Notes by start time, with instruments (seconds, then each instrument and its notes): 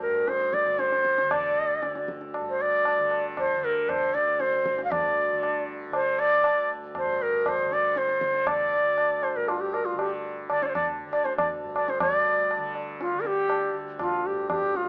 Already playing: tanpura D2 G2 D3
0.02 tanpura G2, bansuri A#4
0.28 bansuri C5, tabla te
0.40 tabla te
0.53 bansuri D5, tabla ke
0.63 tanpura D3, tabla te
0.79 bansuri C5, tabla te
0.92 tabla te
1.05 tabla ke
1.18 tanpura D3, tabla te
1.31 bansuri D5, tabla na, tabla ge
1.80 tanpura D2, tabla te
1.95 tabla te
2.08 tabla ke
2.21 tabla te
2.34 tabla na
2.39 tanpura G2
2.49 bansuri C5
2.61 bansuri D5
2.85 tabla na
2.98 tanpura D3
3.11 tabla na
3.37 bansuri C5, tabla na, tabla ge
3.56 tanpura D3
3.64 bansuri A#4
3.89 bansuri C5, tabla na, tabla ge
4.14 tanpura D2, bansuri D5, tabla te
4.40 bansuri C5, tabla te
4.53 tabla te
4.66 tabla ke
4.72 tanpura G2
4.78 tabla te
4.84 bansuri F5
4.91 bansuri D5, tabla na, tabla ge
5.31 tanpura D3
5.43 tabla na
5.89 tanpura D3, tabla na
5.94 bansuri C5
6.19 bansuri D5, tabla na
6.44 tanpura D2, tabla na
6.95 bansuri C5, tabla na, tabla ge
7.04 tanpura G2
7.22 bansuri A#4
7.46 bansuri C5, tabla na, tabla ge
7.62 tanpura D3
7.72 bansuri D5, tabla te
7.96 bansuri C5, tabla te
8.09 tabla te
8.20 tanpura D3, tabla ke
8.34 tabla te
8.47 bansuri D5, tabla na, tabla ge
8.77 tanpura D2
8.98 tabla na
9.23 bansuri C5, tabla na
9.35 tanpura G2, bansuri A#4
9.48 bansuri F4, tabla na
9.61 bansuri G4
9.74 bansuri A#4, tabla na
9.85 bansuri F4
9.93 tanpura D3
9.99 bansuri G4, tabla na
10.49 tanpura D3, bansuri D5, tabla na
10.62 bansuri C5 D5, tabla te
10.69 bansuri C5
10.75 bansuri D5, tabla na, tabla ge
11.08 tanpura D2
11.13 bansuri D5, tabla na
11.25 bansuri C5, tabla te
11.37 bansuri D5, tabla na, tabla ge
11.64 tanpura G2
11.76 bansuri D5, tabla na
11.88 bansuri C5, tabla te
12.00 tanpura G2, bansuri D5, tabla na, tabla ge
12.51 tabla na
12.57 tanpura D3
12.75 tabla na
13.01 bansuri F4, tabla te
13.13 tanpura D3
13.20 bansuri A#4
13.25 bansuri G4, tabla te
13.49 tabla na
13.70 tanpura D2
13.99 bansuri F4, tabla na, tabla ge
14.26 tanpura G2, bansuri G4
14.50 bansuri G4, tabla na, tabla ge
14.75 bansuri F4, tabla te
14.84 tanpura D3